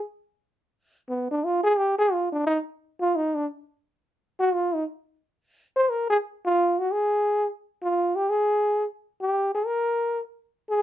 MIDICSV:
0, 0, Header, 1, 2, 480
1, 0, Start_track
1, 0, Tempo, 343643
1, 500, Time_signature, 4, 2, 24, 8
1, 15118, End_track
2, 0, Start_track
2, 0, Title_t, "Trombone"
2, 0, Program_c, 0, 57
2, 1524, Note_on_c, 0, 59, 80
2, 1787, Note_off_c, 0, 59, 0
2, 1831, Note_on_c, 0, 62, 89
2, 2015, Note_on_c, 0, 65, 88
2, 2036, Note_off_c, 0, 62, 0
2, 2279, Note_off_c, 0, 65, 0
2, 2288, Note_on_c, 0, 68, 109
2, 2481, Note_on_c, 0, 67, 95
2, 2502, Note_off_c, 0, 68, 0
2, 2765, Note_off_c, 0, 67, 0
2, 2777, Note_on_c, 0, 68, 111
2, 2966, Note_on_c, 0, 65, 92
2, 2987, Note_off_c, 0, 68, 0
2, 3235, Note_off_c, 0, 65, 0
2, 3243, Note_on_c, 0, 62, 93
2, 3387, Note_off_c, 0, 62, 0
2, 3444, Note_on_c, 0, 63, 94
2, 3614, Note_off_c, 0, 63, 0
2, 4203, Note_on_c, 0, 65, 96
2, 4413, Note_on_c, 0, 63, 90
2, 4434, Note_off_c, 0, 65, 0
2, 4679, Note_on_c, 0, 62, 89
2, 4700, Note_off_c, 0, 63, 0
2, 4836, Note_off_c, 0, 62, 0
2, 6145, Note_on_c, 0, 66, 105
2, 6336, Note_on_c, 0, 65, 93
2, 6357, Note_off_c, 0, 66, 0
2, 6625, Note_on_c, 0, 63, 88
2, 6646, Note_off_c, 0, 65, 0
2, 6770, Note_off_c, 0, 63, 0
2, 8050, Note_on_c, 0, 72, 102
2, 8235, Note_on_c, 0, 70, 91
2, 8255, Note_off_c, 0, 72, 0
2, 8510, Note_off_c, 0, 70, 0
2, 8519, Note_on_c, 0, 68, 104
2, 8614, Note_off_c, 0, 68, 0
2, 9014, Note_on_c, 0, 65, 100
2, 9483, Note_on_c, 0, 66, 85
2, 9504, Note_off_c, 0, 65, 0
2, 9670, Note_on_c, 0, 68, 102
2, 9691, Note_off_c, 0, 66, 0
2, 10442, Note_off_c, 0, 68, 0
2, 10932, Note_on_c, 0, 65, 87
2, 11391, Note_on_c, 0, 67, 93
2, 11412, Note_off_c, 0, 65, 0
2, 11587, Note_on_c, 0, 68, 103
2, 11608, Note_off_c, 0, 67, 0
2, 12359, Note_off_c, 0, 68, 0
2, 12862, Note_on_c, 0, 67, 95
2, 13288, Note_off_c, 0, 67, 0
2, 13335, Note_on_c, 0, 68, 86
2, 13496, Note_on_c, 0, 70, 92
2, 13517, Note_off_c, 0, 68, 0
2, 14271, Note_off_c, 0, 70, 0
2, 14948, Note_on_c, 0, 68, 97
2, 15118, Note_off_c, 0, 68, 0
2, 15118, End_track
0, 0, End_of_file